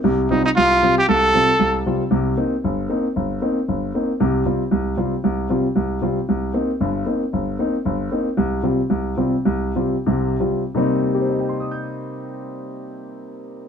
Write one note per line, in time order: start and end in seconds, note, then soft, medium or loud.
0.04 0.26 C2 medium
0.04 0.26 C3 medium
0.30 0.46 C3 medium
0.30 0.46 G3 medium
0.30 0.46 C4 soft
0.30 0.44 D#4 medium
0.30 0.47 F4 medium
0.46 0.50 D#4 medium
0.56 0.78 C2 medium
0.56 0.94 F4 medium
0.82 0.98 C3 soft
0.82 0.98 G3 soft
0.82 0.99 C4 soft
0.82 0.99 F4 medium
0.98 1.08 G4 medium
1.09 1.30 C2 medium
1.09 1.82 A4 medium
1.34 1.50 C3 soft
1.34 1.50 G3 soft
1.34 1.50 C4 soft
1.34 1.50 F4 medium
1.60 1.82 C2 medium
1.86 2.02 C3 soft
1.86 2.02 G3 soft
1.86 2.02 C4 soft
1.86 2.02 F4 medium
2.11 2.33 C2 medium
2.11 2.34 C3 medium
2.37 2.53 A#3 soft
2.37 2.53 C4 soft
2.37 2.54 D#4 medium
2.64 2.86 G1 medium
2.89 3.06 A#3 medium
2.89 3.06 C4 soft
2.89 3.06 D#4 medium
3.16 3.38 G1 medium
3.42 3.58 A#3 medium
3.42 3.58 C4 soft
3.42 3.58 D#4 medium
3.68 3.90 G1 medium
3.95 4.10 A#3 soft
3.95 4.10 C4 soft
3.95 4.10 D#4 medium
4.20 4.42 C2 medium
4.20 4.42 C3 medium
4.45 4.61 C3 medium
4.45 4.62 G3 soft
4.45 4.62 C4 soft
4.45 4.62 F4 medium
4.71 4.93 C2 medium
4.97 5.13 C3 soft
4.97 5.13 G3 soft
4.97 5.14 C4 soft
4.97 5.14 F4 medium
5.24 5.46 C2 medium
5.49 5.66 C3 soft
5.49 5.66 G3 soft
5.49 5.66 C4 soft
5.49 5.66 F4 medium
5.76 5.98 C2 medium
6.01 6.18 C3 soft
6.01 6.18 G3 soft
6.01 6.18 C4 soft
6.01 6.18 F4 medium
6.29 6.50 C2 medium
6.53 6.70 A#3 medium
6.53 6.70 C4 soft
6.53 6.70 D#4 medium
6.80 7.02 G1 medium
6.80 7.02 G2 medium
7.06 7.22 A#3 soft
7.06 7.22 C4 soft
7.06 7.23 D#4 medium
7.33 7.55 G1 medium
7.59 7.75 A#3 soft
7.59 7.75 C4 soft
7.59 7.75 D#4 medium
7.85 8.07 G1 medium
8.12 8.27 A#3 soft
8.12 8.27 C4 soft
8.12 8.27 D#4 medium
8.37 8.59 C2 medium
8.63 8.79 C3 medium
8.63 8.80 G3 soft
8.63 8.80 C4 soft
8.63 8.80 F4 medium
8.90 9.13 C2 medium
9.17 9.34 C3 soft
9.17 9.34 G3 soft
9.17 9.35 C4 soft
9.17 9.35 F4 medium
9.45 9.71 C2 medium
9.76 9.95 C3 soft
9.76 9.95 G3 soft
9.76 9.95 C4 soft
9.76 9.95 F4 medium
10.06 10.35 C2 medium
10.06 10.35 C3 medium
10.40 10.62 C3 soft
10.40 10.62 G3 soft
10.40 10.62 C4 soft
10.40 10.62 F4 medium
10.75 13.69 C3 medium
10.75 13.69 G3 medium
10.75 13.69 A#3 medium
10.75 13.69 C4 medium
10.75 13.69 D#4 medium
11.14 13.69 G4 soft
11.22 13.69 C5 soft
11.30 13.69 D#5 soft
11.39 13.69 G5 soft
11.49 13.69 C6 soft
11.60 13.69 D#6 soft
11.71 13.69 G6 soft